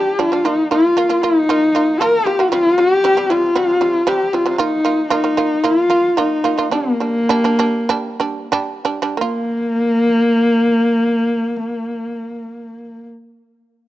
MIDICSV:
0, 0, Header, 1, 3, 480
1, 0, Start_track
1, 0, Tempo, 516796
1, 424, Time_signature, 4, 2, 24, 8
1, 4744, Tempo, 531444
1, 5704, Tempo, 563910
1, 6664, Tempo, 614125
1, 7624, Tempo, 666667
1, 8104, Tempo, 688073
1, 11374, End_track
2, 0, Start_track
2, 0, Title_t, "Horsehead fiddle"
2, 0, Program_c, 0, 110
2, 0, Note_on_c, 0, 67, 90
2, 179, Note_on_c, 0, 65, 104
2, 193, Note_off_c, 0, 67, 0
2, 420, Note_on_c, 0, 63, 106
2, 434, Note_off_c, 0, 65, 0
2, 654, Note_off_c, 0, 63, 0
2, 659, Note_on_c, 0, 65, 104
2, 1138, Note_on_c, 0, 63, 112
2, 1152, Note_off_c, 0, 65, 0
2, 1860, Note_on_c, 0, 70, 111
2, 1873, Note_off_c, 0, 63, 0
2, 2103, Note_on_c, 0, 67, 98
2, 2117, Note_off_c, 0, 70, 0
2, 2329, Note_off_c, 0, 67, 0
2, 2335, Note_on_c, 0, 65, 108
2, 2586, Note_on_c, 0, 67, 112
2, 2600, Note_off_c, 0, 65, 0
2, 3063, Note_on_c, 0, 65, 106
2, 3077, Note_off_c, 0, 67, 0
2, 3789, Note_on_c, 0, 67, 95
2, 3803, Note_off_c, 0, 65, 0
2, 4021, Note_on_c, 0, 65, 93
2, 4035, Note_off_c, 0, 67, 0
2, 4184, Note_off_c, 0, 65, 0
2, 4184, Note_on_c, 0, 65, 73
2, 4265, Note_on_c, 0, 63, 105
2, 4279, Note_off_c, 0, 65, 0
2, 4745, Note_off_c, 0, 63, 0
2, 4752, Note_on_c, 0, 63, 94
2, 5225, Note_on_c, 0, 65, 110
2, 5239, Note_off_c, 0, 63, 0
2, 5710, Note_on_c, 0, 63, 89
2, 5723, Note_off_c, 0, 65, 0
2, 6173, Note_off_c, 0, 63, 0
2, 6178, Note_on_c, 0, 58, 97
2, 7593, Note_off_c, 0, 58, 0
2, 8107, Note_on_c, 0, 58, 108
2, 10798, Note_off_c, 0, 58, 0
2, 11374, End_track
3, 0, Start_track
3, 0, Title_t, "Shamisen"
3, 0, Program_c, 1, 106
3, 0, Note_on_c, 1, 55, 91
3, 0, Note_on_c, 1, 62, 109
3, 131, Note_off_c, 1, 55, 0
3, 134, Note_off_c, 1, 62, 0
3, 175, Note_on_c, 1, 55, 73
3, 180, Note_on_c, 1, 62, 74
3, 276, Note_off_c, 1, 55, 0
3, 278, Note_off_c, 1, 62, 0
3, 296, Note_on_c, 1, 55, 64
3, 305, Note_on_c, 1, 62, 71
3, 396, Note_off_c, 1, 55, 0
3, 400, Note_off_c, 1, 62, 0
3, 418, Note_on_c, 1, 58, 82
3, 424, Note_on_c, 1, 65, 87
3, 613, Note_off_c, 1, 58, 0
3, 615, Note_off_c, 1, 65, 0
3, 660, Note_on_c, 1, 58, 67
3, 665, Note_on_c, 1, 65, 77
3, 853, Note_off_c, 1, 58, 0
3, 856, Note_off_c, 1, 65, 0
3, 899, Note_on_c, 1, 58, 89
3, 906, Note_on_c, 1, 65, 91
3, 998, Note_off_c, 1, 58, 0
3, 999, Note_off_c, 1, 65, 0
3, 1016, Note_on_c, 1, 58, 68
3, 1022, Note_on_c, 1, 65, 81
3, 1116, Note_off_c, 1, 58, 0
3, 1118, Note_off_c, 1, 65, 0
3, 1144, Note_on_c, 1, 58, 74
3, 1149, Note_on_c, 1, 65, 82
3, 1335, Note_off_c, 1, 58, 0
3, 1338, Note_off_c, 1, 65, 0
3, 1385, Note_on_c, 1, 58, 92
3, 1392, Note_on_c, 1, 65, 109
3, 1576, Note_off_c, 1, 58, 0
3, 1579, Note_off_c, 1, 65, 0
3, 1624, Note_on_c, 1, 58, 72
3, 1632, Note_on_c, 1, 65, 73
3, 1815, Note_off_c, 1, 58, 0
3, 1819, Note_off_c, 1, 65, 0
3, 1865, Note_on_c, 1, 58, 91
3, 1873, Note_on_c, 1, 65, 105
3, 2055, Note_off_c, 1, 58, 0
3, 2059, Note_off_c, 1, 65, 0
3, 2102, Note_on_c, 1, 58, 64
3, 2108, Note_on_c, 1, 65, 73
3, 2198, Note_off_c, 1, 58, 0
3, 2201, Note_off_c, 1, 65, 0
3, 2220, Note_on_c, 1, 58, 72
3, 2228, Note_on_c, 1, 65, 76
3, 2317, Note_off_c, 1, 58, 0
3, 2321, Note_off_c, 1, 65, 0
3, 2339, Note_on_c, 1, 48, 80
3, 2345, Note_on_c, 1, 55, 105
3, 2532, Note_off_c, 1, 48, 0
3, 2535, Note_off_c, 1, 55, 0
3, 2581, Note_on_c, 1, 48, 66
3, 2588, Note_on_c, 1, 55, 66
3, 2773, Note_off_c, 1, 48, 0
3, 2775, Note_off_c, 1, 55, 0
3, 2824, Note_on_c, 1, 48, 90
3, 2830, Note_on_c, 1, 55, 111
3, 2919, Note_off_c, 1, 48, 0
3, 2922, Note_off_c, 1, 55, 0
3, 2944, Note_on_c, 1, 48, 68
3, 2948, Note_on_c, 1, 55, 79
3, 3038, Note_off_c, 1, 48, 0
3, 3041, Note_off_c, 1, 55, 0
3, 3067, Note_on_c, 1, 48, 76
3, 3074, Note_on_c, 1, 55, 79
3, 3256, Note_off_c, 1, 48, 0
3, 3259, Note_off_c, 1, 55, 0
3, 3302, Note_on_c, 1, 48, 91
3, 3306, Note_on_c, 1, 55, 103
3, 3493, Note_off_c, 1, 48, 0
3, 3495, Note_off_c, 1, 55, 0
3, 3538, Note_on_c, 1, 48, 72
3, 3543, Note_on_c, 1, 55, 80
3, 3731, Note_off_c, 1, 48, 0
3, 3733, Note_off_c, 1, 55, 0
3, 3778, Note_on_c, 1, 48, 98
3, 3784, Note_on_c, 1, 55, 107
3, 3971, Note_off_c, 1, 48, 0
3, 3974, Note_off_c, 1, 55, 0
3, 4024, Note_on_c, 1, 48, 69
3, 4033, Note_on_c, 1, 55, 77
3, 4118, Note_off_c, 1, 48, 0
3, 4123, Note_off_c, 1, 55, 0
3, 4139, Note_on_c, 1, 48, 73
3, 4146, Note_on_c, 1, 55, 62
3, 4236, Note_off_c, 1, 48, 0
3, 4238, Note_off_c, 1, 55, 0
3, 4258, Note_on_c, 1, 58, 91
3, 4264, Note_on_c, 1, 65, 98
3, 4451, Note_off_c, 1, 58, 0
3, 4455, Note_off_c, 1, 65, 0
3, 4501, Note_on_c, 1, 58, 74
3, 4509, Note_on_c, 1, 65, 76
3, 4694, Note_off_c, 1, 58, 0
3, 4698, Note_off_c, 1, 65, 0
3, 4741, Note_on_c, 1, 58, 92
3, 4746, Note_on_c, 1, 65, 109
3, 4836, Note_off_c, 1, 58, 0
3, 4838, Note_off_c, 1, 65, 0
3, 4861, Note_on_c, 1, 58, 73
3, 4866, Note_on_c, 1, 65, 71
3, 4955, Note_off_c, 1, 58, 0
3, 4958, Note_off_c, 1, 65, 0
3, 4984, Note_on_c, 1, 58, 82
3, 4988, Note_on_c, 1, 65, 83
3, 5172, Note_off_c, 1, 58, 0
3, 5174, Note_off_c, 1, 65, 0
3, 5221, Note_on_c, 1, 58, 90
3, 5229, Note_on_c, 1, 65, 95
3, 5413, Note_off_c, 1, 58, 0
3, 5414, Note_off_c, 1, 65, 0
3, 5457, Note_on_c, 1, 58, 72
3, 5463, Note_on_c, 1, 65, 85
3, 5653, Note_off_c, 1, 58, 0
3, 5656, Note_off_c, 1, 65, 0
3, 5705, Note_on_c, 1, 58, 97
3, 5712, Note_on_c, 1, 65, 93
3, 5891, Note_off_c, 1, 58, 0
3, 5893, Note_off_c, 1, 65, 0
3, 5933, Note_on_c, 1, 58, 73
3, 5941, Note_on_c, 1, 65, 77
3, 6030, Note_off_c, 1, 58, 0
3, 6033, Note_off_c, 1, 65, 0
3, 6049, Note_on_c, 1, 58, 67
3, 6057, Note_on_c, 1, 65, 76
3, 6147, Note_off_c, 1, 58, 0
3, 6151, Note_off_c, 1, 65, 0
3, 6167, Note_on_c, 1, 55, 90
3, 6173, Note_on_c, 1, 62, 83
3, 6364, Note_off_c, 1, 55, 0
3, 6366, Note_off_c, 1, 62, 0
3, 6413, Note_on_c, 1, 55, 64
3, 6420, Note_on_c, 1, 62, 64
3, 6612, Note_off_c, 1, 55, 0
3, 6614, Note_off_c, 1, 62, 0
3, 6659, Note_on_c, 1, 55, 102
3, 6665, Note_on_c, 1, 62, 105
3, 6753, Note_off_c, 1, 55, 0
3, 6756, Note_off_c, 1, 62, 0
3, 6776, Note_on_c, 1, 55, 73
3, 6781, Note_on_c, 1, 62, 91
3, 6870, Note_off_c, 1, 55, 0
3, 6872, Note_off_c, 1, 62, 0
3, 6891, Note_on_c, 1, 55, 89
3, 6895, Note_on_c, 1, 62, 102
3, 7081, Note_off_c, 1, 55, 0
3, 7084, Note_off_c, 1, 62, 0
3, 7127, Note_on_c, 1, 55, 116
3, 7130, Note_on_c, 1, 62, 123
3, 7323, Note_off_c, 1, 55, 0
3, 7324, Note_off_c, 1, 62, 0
3, 7366, Note_on_c, 1, 55, 87
3, 7371, Note_on_c, 1, 62, 94
3, 7569, Note_off_c, 1, 55, 0
3, 7571, Note_off_c, 1, 62, 0
3, 7618, Note_on_c, 1, 55, 113
3, 7624, Note_on_c, 1, 62, 115
3, 7809, Note_off_c, 1, 55, 0
3, 7812, Note_off_c, 1, 62, 0
3, 7855, Note_on_c, 1, 55, 81
3, 7858, Note_on_c, 1, 62, 94
3, 7954, Note_off_c, 1, 55, 0
3, 7955, Note_off_c, 1, 62, 0
3, 7980, Note_on_c, 1, 55, 77
3, 7984, Note_on_c, 1, 62, 90
3, 8078, Note_off_c, 1, 55, 0
3, 8080, Note_off_c, 1, 62, 0
3, 8089, Note_on_c, 1, 58, 77
3, 8117, Note_on_c, 1, 65, 77
3, 10781, Note_off_c, 1, 58, 0
3, 10809, Note_off_c, 1, 65, 0
3, 11374, End_track
0, 0, End_of_file